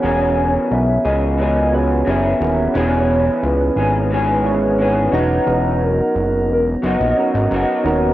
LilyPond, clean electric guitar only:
\new Staff \with { instrumentName = "Clean electric guitar" } { \time 4/4 \key e \lydian \tempo 4 = 88 <e b cis' gis'>4. <b cis' gis'>8 <e b cis' gis'>4 <e b cis' gis'>4 | <e b cis' gis'>4. <b cis' gis'>8 <e b cis' gis'>4 <e b cis' gis'>8 <b, fis b dis' fis'>8~ | <b, fis b dis' fis'>2 <fis b dis' fis'>4 <fis b dis' fis'>4 | }